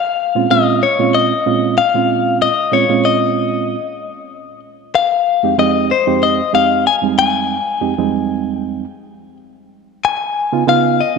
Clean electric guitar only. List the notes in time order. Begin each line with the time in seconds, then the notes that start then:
Already playing: F5
0.51 D#5
0.83 C#5
1.15 D#5
1.78 F5
2.42 D#5
2.73 C#5
3.05 D#5
4.95 F5
5.59 D#5
5.91 C5
6.23 D#5
6.55 F5
6.87 G#5
7.19 G#5
8.57 G5
10.05 G#5
10.69 F5
11.00 D#5